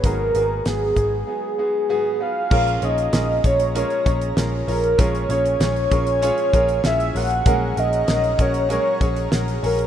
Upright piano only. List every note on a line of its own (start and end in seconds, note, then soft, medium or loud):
0.00 0.04 B3 medium
0.00 0.29 B3 medium
0.00 0.05 F#4 medium
0.00 0.05 G#4 medium
0.00 2.52 A#4 medium
0.05 0.93 G#2 medium
0.05 0.93 D#3 medium
0.05 0.29 F#4 medium
0.05 0.29 G#4 loud
0.35 0.59 B3 medium
0.35 0.60 F#4 medium
0.35 0.60 G#4 medium
0.66 0.90 B3 medium
0.66 0.91 F#4 medium
0.66 0.91 G#4 medium
0.96 1.21 B3 medium
0.96 1.21 F#4 medium
0.96 1.22 G#4 medium
1.27 1.52 B3 medium
1.27 1.52 F#4 medium
1.27 1.53 G#4 medium
1.58 1.83 B3 medium
1.58 1.83 F#4 medium
1.58 1.84 G#4 medium
1.89 2.14 B3 loud
1.89 2.14 F#4 loud
1.89 2.14 G#4 loud
2.20 2.45 B3 medium
2.20 2.45 F#4 medium
2.20 2.45 B4 medium
2.51 3.40 A#2 medium
2.51 3.40 F3 medium
2.51 2.76 C#4 loud
2.51 2.76 F4 loud
2.51 2.76 G#4 medium
2.51 2.76 A#4 loud
2.82 3.07 C#4 medium
2.82 3.07 F4 medium
2.82 3.07 G#4 medium
2.82 3.07 C#5 medium
3.13 3.38 C#4 medium
3.13 3.38 F4 medium
3.13 3.38 G#4 medium
3.13 3.38 A#4 medium
3.44 3.69 C#4 medium
3.44 3.69 F4 medium
3.44 3.69 G#4 medium
3.44 3.69 C#5 medium
3.75 4.00 C#4 loud
3.75 4.00 F4 medium
3.75 4.00 G#4 medium
3.75 4.00 A#4 loud
4.05 4.30 C#4 medium
4.05 4.30 F4 medium
4.05 4.31 G#4 medium
4.05 4.31 C#5 medium
4.36 4.61 C#4 medium
4.36 4.61 F4 medium
4.36 4.61 G#4 medium
4.36 4.62 A#4 medium
4.67 4.92 C#4 medium
4.67 4.92 F4 medium
4.67 4.93 G#4 medium
4.67 4.93 C#5 medium
4.98 5.87 A#2 medium
4.98 5.87 F3 medium
4.98 5.23 C#4 loud
4.98 5.23 F4 medium
4.98 5.24 G#4 medium
4.98 5.24 A#4 loud
5.29 5.54 C#4 medium
5.29 5.54 F4 medium
5.29 5.54 G#4 medium
5.29 5.54 C#5 medium
5.60 5.85 C#4 medium
5.60 5.85 F4 medium
5.60 5.85 G#4 medium
5.60 5.86 C#5 medium
5.91 6.16 C#4 medium
5.91 6.16 F4 medium
5.91 6.16 G#4 medium
5.91 6.17 A#4 medium
6.22 6.47 C#4 loud
6.22 6.47 F4 loud
6.22 6.47 G#4 loud
6.22 6.47 C#5 loud
6.53 6.78 C#4 medium
6.53 6.78 F4 medium
6.53 6.78 G#4 medium
6.53 6.78 A#4 loud
6.84 7.09 C#4 medium
6.84 7.09 F4 medium
6.84 7.09 G#4 medium
6.84 7.09 C#5 medium
7.15 7.40 C#4 medium
7.15 7.40 F4 medium
7.15 7.40 G#4 medium
7.15 7.40 A#4 medium
7.46 8.35 A#2 medium
7.46 8.35 A#3 medium
7.46 7.71 C#4 medium
7.46 7.71 F#4 medium
7.46 7.71 G#4 loud
7.46 7.71 A#4 loud
7.76 8.01 C#4 medium
7.76 8.02 F#4 medium
7.76 8.02 G#4 medium
7.76 8.02 A#4 medium
8.07 8.32 C#4 medium
8.07 8.33 F#4 medium
8.07 8.33 G#4 medium
8.07 8.33 A#4 loud
8.38 8.63 C#4 medium
8.38 8.64 F#4 medium
8.38 8.64 G#4 medium
8.38 8.64 A#4 medium
8.69 8.94 C#4 loud
8.69 8.94 F#4 medium
8.69 8.95 G#4 medium
8.69 8.95 A#4 loud
9.00 9.25 C#4 medium
9.00 9.26 F#4 medium
9.00 9.26 G#4 medium
9.00 9.26 C#5 medium
9.31 9.56 C#4 medium
9.31 9.56 F#4 medium
9.31 9.56 G#4 medium
9.31 9.57 A#4 medium
9.62 9.87 C#4 medium
9.62 9.87 F#4 medium
9.62 9.87 G#4 medium
9.62 9.87 C#5 medium